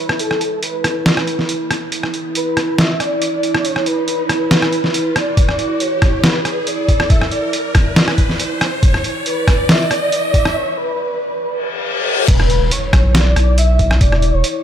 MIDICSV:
0, 0, Header, 1, 8, 480
1, 0, Start_track
1, 0, Tempo, 431655
1, 218, Time_signature, 4, 2, 24, 8
1, 16272, End_track
2, 0, Start_track
2, 0, Title_t, "Soft synth lead"
2, 0, Program_c, 0, 80
2, 0, Note_on_c, 0, 71, 96
2, 216, Note_off_c, 0, 71, 0
2, 222, Note_on_c, 0, 69, 105
2, 667, Note_off_c, 0, 69, 0
2, 705, Note_on_c, 0, 71, 88
2, 1857, Note_off_c, 0, 71, 0
2, 2621, Note_on_c, 0, 71, 95
2, 3066, Note_off_c, 0, 71, 0
2, 3101, Note_on_c, 0, 76, 111
2, 3342, Note_on_c, 0, 74, 115
2, 3359, Note_off_c, 0, 76, 0
2, 4062, Note_on_c, 0, 73, 109
2, 4079, Note_off_c, 0, 74, 0
2, 4300, Note_on_c, 0, 71, 114
2, 4317, Note_off_c, 0, 73, 0
2, 5742, Note_on_c, 0, 74, 112
2, 5759, Note_off_c, 0, 71, 0
2, 6461, Note_on_c, 0, 73, 98
2, 6478, Note_off_c, 0, 74, 0
2, 6935, Note_off_c, 0, 73, 0
2, 6942, Note_on_c, 0, 71, 93
2, 7416, Note_on_c, 0, 74, 101
2, 7433, Note_off_c, 0, 71, 0
2, 7899, Note_on_c, 0, 76, 112
2, 7915, Note_off_c, 0, 74, 0
2, 8133, Note_off_c, 0, 76, 0
2, 8140, Note_on_c, 0, 74, 93
2, 8585, Note_off_c, 0, 74, 0
2, 10295, Note_on_c, 0, 71, 102
2, 10773, Note_on_c, 0, 76, 118
2, 10790, Note_off_c, 0, 71, 0
2, 11006, Note_off_c, 0, 76, 0
2, 11012, Note_on_c, 0, 74, 110
2, 11738, Note_on_c, 0, 73, 115
2, 11755, Note_off_c, 0, 74, 0
2, 11977, Note_on_c, 0, 71, 99
2, 11994, Note_off_c, 0, 73, 0
2, 13418, Note_off_c, 0, 71, 0
2, 13660, Note_on_c, 0, 71, 103
2, 14141, Note_on_c, 0, 73, 103
2, 14158, Note_off_c, 0, 71, 0
2, 14620, Note_on_c, 0, 74, 109
2, 14636, Note_off_c, 0, 73, 0
2, 15099, Note_on_c, 0, 76, 115
2, 15116, Note_off_c, 0, 74, 0
2, 15579, Note_off_c, 0, 76, 0
2, 15584, Note_on_c, 0, 74, 116
2, 15945, Note_on_c, 0, 73, 101
2, 15961, Note_off_c, 0, 74, 0
2, 16272, Note_off_c, 0, 73, 0
2, 16272, End_track
3, 0, Start_track
3, 0, Title_t, "Analog synth pad"
3, 0, Program_c, 1, 89
3, 0, Note_on_c, 1, 64, 77
3, 11737, Note_off_c, 1, 64, 0
3, 13659, Note_on_c, 1, 64, 79
3, 16272, Note_off_c, 1, 64, 0
3, 16272, End_track
4, 0, Start_track
4, 0, Title_t, "Sub bass"
4, 0, Program_c, 2, 38
4, 13659, Note_on_c, 2, 28, 97
4, 14009, Note_off_c, 2, 28, 0
4, 14026, Note_on_c, 2, 28, 102
4, 14130, Note_off_c, 2, 28, 0
4, 14378, Note_on_c, 2, 35, 103
4, 14844, Note_off_c, 2, 35, 0
4, 14860, Note_on_c, 2, 35, 96
4, 15564, Note_off_c, 2, 35, 0
4, 15578, Note_on_c, 2, 28, 100
4, 15928, Note_off_c, 2, 28, 0
4, 15946, Note_on_c, 2, 28, 99
4, 16049, Note_off_c, 2, 28, 0
4, 16272, End_track
5, 0, Start_track
5, 0, Title_t, "Impact"
5, 0, Program_c, 3, 103
5, 13659, Note_on_c, 3, 60, 77
5, 15578, Note_off_c, 3, 60, 0
5, 16272, End_track
6, 0, Start_track
6, 0, Title_t, "Reverse cymbal"
6, 0, Program_c, 4, 119
6, 12697, Note_on_c, 4, 60, 79
6, 13658, Note_off_c, 4, 60, 0
6, 16272, End_track
7, 0, Start_track
7, 0, Title_t, "Riser"
7, 0, Program_c, 5, 103
7, 0, Note_on_c, 5, 60, 79
7, 11737, Note_off_c, 5, 60, 0
7, 16272, End_track
8, 0, Start_track
8, 0, Title_t, "Drums"
8, 103, Note_on_c, 9, 37, 76
8, 215, Note_off_c, 9, 37, 0
8, 216, Note_on_c, 9, 42, 78
8, 327, Note_off_c, 9, 42, 0
8, 342, Note_on_c, 9, 37, 49
8, 454, Note_off_c, 9, 37, 0
8, 456, Note_on_c, 9, 42, 53
8, 567, Note_off_c, 9, 42, 0
8, 696, Note_on_c, 9, 42, 80
8, 807, Note_off_c, 9, 42, 0
8, 937, Note_on_c, 9, 37, 72
8, 937, Note_on_c, 9, 42, 53
8, 1049, Note_off_c, 9, 37, 0
8, 1049, Note_off_c, 9, 42, 0
8, 1177, Note_on_c, 9, 38, 127
8, 1177, Note_on_c, 9, 42, 86
8, 1288, Note_off_c, 9, 38, 0
8, 1288, Note_off_c, 9, 42, 0
8, 1303, Note_on_c, 9, 37, 77
8, 1414, Note_off_c, 9, 37, 0
8, 1417, Note_on_c, 9, 42, 56
8, 1528, Note_off_c, 9, 42, 0
8, 1544, Note_on_c, 9, 38, 35
8, 1655, Note_off_c, 9, 38, 0
8, 1656, Note_on_c, 9, 42, 82
8, 1767, Note_off_c, 9, 42, 0
8, 1897, Note_on_c, 9, 37, 72
8, 1897, Note_on_c, 9, 42, 52
8, 2008, Note_off_c, 9, 37, 0
8, 2008, Note_off_c, 9, 42, 0
8, 2135, Note_on_c, 9, 42, 80
8, 2246, Note_off_c, 9, 42, 0
8, 2262, Note_on_c, 9, 37, 48
8, 2373, Note_off_c, 9, 37, 0
8, 2376, Note_on_c, 9, 42, 53
8, 2488, Note_off_c, 9, 42, 0
8, 2616, Note_on_c, 9, 42, 80
8, 2727, Note_off_c, 9, 42, 0
8, 2856, Note_on_c, 9, 37, 73
8, 2856, Note_on_c, 9, 42, 51
8, 2967, Note_off_c, 9, 37, 0
8, 2967, Note_off_c, 9, 42, 0
8, 3096, Note_on_c, 9, 38, 127
8, 3096, Note_on_c, 9, 42, 83
8, 3208, Note_off_c, 9, 38, 0
8, 3208, Note_off_c, 9, 42, 0
8, 3337, Note_on_c, 9, 37, 47
8, 3337, Note_on_c, 9, 42, 54
8, 3448, Note_off_c, 9, 37, 0
8, 3448, Note_off_c, 9, 42, 0
8, 3577, Note_on_c, 9, 42, 81
8, 3688, Note_off_c, 9, 42, 0
8, 3817, Note_on_c, 9, 42, 52
8, 3928, Note_off_c, 9, 42, 0
8, 3942, Note_on_c, 9, 37, 76
8, 4053, Note_off_c, 9, 37, 0
8, 4055, Note_on_c, 9, 42, 78
8, 4166, Note_off_c, 9, 42, 0
8, 4181, Note_on_c, 9, 37, 52
8, 4292, Note_off_c, 9, 37, 0
8, 4295, Note_on_c, 9, 42, 51
8, 4406, Note_off_c, 9, 42, 0
8, 4534, Note_on_c, 9, 42, 76
8, 4645, Note_off_c, 9, 42, 0
8, 4775, Note_on_c, 9, 37, 73
8, 4775, Note_on_c, 9, 42, 52
8, 4886, Note_off_c, 9, 37, 0
8, 4886, Note_off_c, 9, 42, 0
8, 5015, Note_on_c, 9, 38, 126
8, 5015, Note_on_c, 9, 42, 82
8, 5126, Note_off_c, 9, 38, 0
8, 5126, Note_off_c, 9, 42, 0
8, 5141, Note_on_c, 9, 37, 79
8, 5253, Note_off_c, 9, 37, 0
8, 5255, Note_on_c, 9, 42, 53
8, 5366, Note_off_c, 9, 42, 0
8, 5383, Note_on_c, 9, 38, 37
8, 5494, Note_off_c, 9, 38, 0
8, 5496, Note_on_c, 9, 42, 80
8, 5607, Note_off_c, 9, 42, 0
8, 5736, Note_on_c, 9, 37, 77
8, 5736, Note_on_c, 9, 42, 50
8, 5847, Note_off_c, 9, 37, 0
8, 5847, Note_off_c, 9, 42, 0
8, 5974, Note_on_c, 9, 36, 118
8, 5974, Note_on_c, 9, 42, 73
8, 6085, Note_off_c, 9, 36, 0
8, 6086, Note_off_c, 9, 42, 0
8, 6101, Note_on_c, 9, 37, 52
8, 6212, Note_off_c, 9, 37, 0
8, 6214, Note_on_c, 9, 42, 50
8, 6325, Note_off_c, 9, 42, 0
8, 6453, Note_on_c, 9, 42, 78
8, 6564, Note_off_c, 9, 42, 0
8, 6693, Note_on_c, 9, 37, 79
8, 6693, Note_on_c, 9, 42, 49
8, 6695, Note_on_c, 9, 36, 109
8, 6804, Note_off_c, 9, 37, 0
8, 6804, Note_off_c, 9, 42, 0
8, 6806, Note_off_c, 9, 36, 0
8, 6934, Note_on_c, 9, 38, 127
8, 6934, Note_on_c, 9, 42, 77
8, 7045, Note_off_c, 9, 38, 0
8, 7045, Note_off_c, 9, 42, 0
8, 7173, Note_on_c, 9, 37, 52
8, 7173, Note_on_c, 9, 42, 50
8, 7284, Note_off_c, 9, 37, 0
8, 7284, Note_off_c, 9, 42, 0
8, 7415, Note_on_c, 9, 42, 78
8, 7526, Note_off_c, 9, 42, 0
8, 7655, Note_on_c, 9, 36, 63
8, 7657, Note_on_c, 9, 42, 50
8, 7766, Note_off_c, 9, 36, 0
8, 7768, Note_off_c, 9, 42, 0
8, 7782, Note_on_c, 9, 37, 81
8, 7893, Note_off_c, 9, 37, 0
8, 7895, Note_on_c, 9, 42, 72
8, 7896, Note_on_c, 9, 36, 115
8, 8007, Note_off_c, 9, 36, 0
8, 8007, Note_off_c, 9, 42, 0
8, 8023, Note_on_c, 9, 37, 54
8, 8134, Note_off_c, 9, 37, 0
8, 8134, Note_on_c, 9, 42, 50
8, 8245, Note_off_c, 9, 42, 0
8, 8376, Note_on_c, 9, 42, 77
8, 8487, Note_off_c, 9, 42, 0
8, 8615, Note_on_c, 9, 37, 80
8, 8615, Note_on_c, 9, 42, 50
8, 8616, Note_on_c, 9, 36, 108
8, 8726, Note_off_c, 9, 37, 0
8, 8726, Note_off_c, 9, 42, 0
8, 8727, Note_off_c, 9, 36, 0
8, 8855, Note_on_c, 9, 38, 122
8, 8855, Note_on_c, 9, 42, 81
8, 8967, Note_off_c, 9, 38, 0
8, 8967, Note_off_c, 9, 42, 0
8, 8982, Note_on_c, 9, 37, 87
8, 9093, Note_off_c, 9, 37, 0
8, 9095, Note_on_c, 9, 42, 51
8, 9096, Note_on_c, 9, 36, 62
8, 9206, Note_off_c, 9, 42, 0
8, 9207, Note_off_c, 9, 36, 0
8, 9223, Note_on_c, 9, 38, 35
8, 9335, Note_off_c, 9, 38, 0
8, 9336, Note_on_c, 9, 42, 76
8, 9447, Note_off_c, 9, 42, 0
8, 9576, Note_on_c, 9, 37, 82
8, 9576, Note_on_c, 9, 42, 50
8, 9687, Note_off_c, 9, 37, 0
8, 9687, Note_off_c, 9, 42, 0
8, 9816, Note_on_c, 9, 36, 116
8, 9817, Note_on_c, 9, 42, 75
8, 9927, Note_off_c, 9, 36, 0
8, 9928, Note_off_c, 9, 42, 0
8, 9943, Note_on_c, 9, 37, 55
8, 10054, Note_off_c, 9, 37, 0
8, 10056, Note_on_c, 9, 42, 52
8, 10167, Note_off_c, 9, 42, 0
8, 10296, Note_on_c, 9, 42, 78
8, 10408, Note_off_c, 9, 42, 0
8, 10536, Note_on_c, 9, 36, 104
8, 10537, Note_on_c, 9, 37, 81
8, 10537, Note_on_c, 9, 42, 51
8, 10647, Note_off_c, 9, 36, 0
8, 10648, Note_off_c, 9, 37, 0
8, 10648, Note_off_c, 9, 42, 0
8, 10776, Note_on_c, 9, 38, 121
8, 10776, Note_on_c, 9, 42, 84
8, 10887, Note_off_c, 9, 38, 0
8, 10887, Note_off_c, 9, 42, 0
8, 11017, Note_on_c, 9, 37, 57
8, 11017, Note_on_c, 9, 42, 53
8, 11128, Note_off_c, 9, 37, 0
8, 11128, Note_off_c, 9, 42, 0
8, 11258, Note_on_c, 9, 42, 78
8, 11369, Note_off_c, 9, 42, 0
8, 11497, Note_on_c, 9, 36, 63
8, 11498, Note_on_c, 9, 42, 53
8, 11608, Note_off_c, 9, 36, 0
8, 11610, Note_off_c, 9, 42, 0
8, 11625, Note_on_c, 9, 37, 85
8, 11736, Note_off_c, 9, 37, 0
8, 13659, Note_on_c, 9, 36, 118
8, 13659, Note_on_c, 9, 42, 83
8, 13659, Note_on_c, 9, 49, 106
8, 13770, Note_off_c, 9, 36, 0
8, 13770, Note_off_c, 9, 42, 0
8, 13770, Note_off_c, 9, 49, 0
8, 13785, Note_on_c, 9, 37, 53
8, 13896, Note_off_c, 9, 37, 0
8, 13897, Note_on_c, 9, 42, 55
8, 14009, Note_off_c, 9, 42, 0
8, 14138, Note_on_c, 9, 42, 84
8, 14249, Note_off_c, 9, 42, 0
8, 14378, Note_on_c, 9, 36, 112
8, 14379, Note_on_c, 9, 37, 82
8, 14379, Note_on_c, 9, 42, 55
8, 14490, Note_off_c, 9, 36, 0
8, 14490, Note_off_c, 9, 37, 0
8, 14490, Note_off_c, 9, 42, 0
8, 14619, Note_on_c, 9, 38, 127
8, 14619, Note_on_c, 9, 42, 91
8, 14731, Note_off_c, 9, 38, 0
8, 14731, Note_off_c, 9, 42, 0
8, 14860, Note_on_c, 9, 37, 54
8, 14860, Note_on_c, 9, 42, 57
8, 14971, Note_off_c, 9, 37, 0
8, 14971, Note_off_c, 9, 42, 0
8, 15099, Note_on_c, 9, 42, 86
8, 15210, Note_off_c, 9, 42, 0
8, 15337, Note_on_c, 9, 42, 57
8, 15338, Note_on_c, 9, 36, 65
8, 15449, Note_off_c, 9, 42, 0
8, 15450, Note_off_c, 9, 36, 0
8, 15466, Note_on_c, 9, 37, 81
8, 15577, Note_off_c, 9, 37, 0
8, 15578, Note_on_c, 9, 36, 124
8, 15578, Note_on_c, 9, 42, 83
8, 15689, Note_off_c, 9, 42, 0
8, 15690, Note_off_c, 9, 36, 0
8, 15706, Note_on_c, 9, 37, 52
8, 15817, Note_off_c, 9, 37, 0
8, 15817, Note_on_c, 9, 42, 57
8, 15928, Note_off_c, 9, 42, 0
8, 16056, Note_on_c, 9, 42, 83
8, 16168, Note_off_c, 9, 42, 0
8, 16272, End_track
0, 0, End_of_file